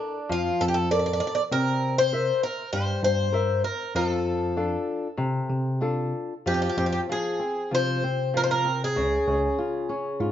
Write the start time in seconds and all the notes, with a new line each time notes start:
Already playing: D4 A4 A#4 D5
0.29 F2 F3 F4
0.61 F2 A4
0.68 G4
0.74 A4
0.91 A4 A#4 D5
0.99 D5
1.06 D5
1.13 D5
1.20 D5
1.27 D5
1.35 D5
1.52 C3 C4 A#4
1.98 C5
2.12 A#4 C5 E5
2.43 A#4
2.73 G2 G3 C5
3.03 G2 C5
3.32 A#4 C5 E5
3.64 A#4
3.95 F2 F3 A4
4.57 D4 F4 A4
5.17 C3
5.50 C3
5.81 D4 F4 A4
6.46 F2 F3 G4
6.54 G4
6.62 G4
6.69 G4
6.77 F2 C4 G4
6.86 G4
6.92 G4
7.09 F3 G#4
7.39 C4
7.71 C3 F3 C5
8.03 C4
8.34 F3 A#4
8.44 C5
8.51 A#4
8.65 C4
8.84 G#4
8.96 C#2 C#3
9.27 C#2 C#4
9.59 F4
9.89 C#4
10.20 G#2 F4